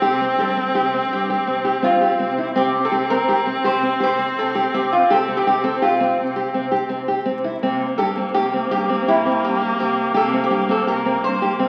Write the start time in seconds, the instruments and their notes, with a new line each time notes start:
Already playing: viola C4, resonator guitar played with a steel bar A4
0.01 cello C3, nylon-string guitar G4
0.21 nylon-string guitar C4
0.37 cello G2, nylon-string guitar G4, resonator guitar played with a steel bar A4
0.57 nylon-string guitar C4
0.74 cello C3, nylon-string guitar G4
0.94 nylon-string guitar C4
1.10 cello G2, resonator guitar played with a steel bar G4
1.30 nylon-string guitar G4
1.46 cello C3, nylon-string guitar C4
1.65 nylon-string guitar G4
1.82 cello G2, nylon-string guitar C4, resonator guitar played with a steel bar F4
2.01 nylon-string guitar G4
2.19 cello C3, nylon-string guitar C4
2.38 nylon-string guitar E4
2.54 cello C3, viola C4, nylon-string guitar C4, resonator guitar played with a steel bar G4
2.85 resonator guitar played with a steel bar A4
2.91 cello C3, nylon-string guitar G4
3.10 nylon-string guitar C4, resonator guitar played with a steel bar A#4
3.28 cello C3, nylon-string guitar G4
3.46 nylon-string guitar C4
3.64 cello C3, nylon-string guitar G4, resonator guitar played with a steel bar C5
3.83 nylon-string guitar C4
4.00 cello C3, nylon-string guitar G4, resonator guitar played with a steel bar C5
4.18 nylon-string guitar C4
4.37 cello C3, resonator guitar played with a steel bar A4
4.55 nylon-string guitar G4
4.73 cello C3, nylon-string guitar C4, resonator guitar played with a steel bar G4
4.92 resonator guitar played with a steel bar F4
5.10 cello C3, nylon-string guitar G4, resonator guitar played with a steel bar A4
5.28 nylon-string guitar C4
5.37 resonator guitar played with a steel bar G4
5.45 cello C3, nylon-string guitar G4
5.64 nylon-string guitar C4, resonator guitar played with a steel bar A4
5.81 cello C3, resonator guitar played with a steel bar F4, nylon-string guitar G4
6.00 nylon-string guitar C4
6.17 cello C3
6.36 nylon-string guitar G4
6.53 cello C3, nylon-string guitar C4
6.72 nylon-string guitar G4
6.89 cello C3, nylon-string guitar C4
7.08 nylon-string guitar G4
7.25 cello C3, nylon-string guitar C4
7.44 nylon-string guitar E4
7.62 cello C3, viola A#3, nylon-string guitar C4
7.98 cello G2, nylon-string guitar G4, resonator guitar played with a steel bar A4
8.17 nylon-string guitar C4
8.34 cello C3, resonator guitar played with a steel bar G4, nylon-string guitar G4
8.53 nylon-string guitar C4
8.70 cello G2, resonator guitar played with a steel bar G4, nylon-string guitar G4
8.89 nylon-string guitar C4
9.07 cello C3, resonator guitar played with a steel bar E4, nylon-string guitar G4
9.26 nylon-string guitar C4
9.43 cello G2, resonator guitar played with a steel bar G4
9.62 nylon-string guitar G4
9.79 cello C3, nylon-string guitar C4, resonator guitar played with a steel bar G4
10.14 cello C3, nylon-string guitar G4, resonator guitar played with a steel bar A4
10.33 nylon-string guitar C4
10.44 resonator guitar played with a steel bar G4
10.50 cello G2, nylon-string guitar G4
10.69 nylon-string guitar C4, resonator guitar played with a steel bar A4
10.86 cello C3, nylon-string guitar G4, resonator guitar played with a steel bar A#4
11.05 nylon-string guitar C4
11.22 cello G2, resonator guitar played with a steel bar C5
11.42 nylon-string guitar G4
11.57 cello C3, nylon-string guitar C4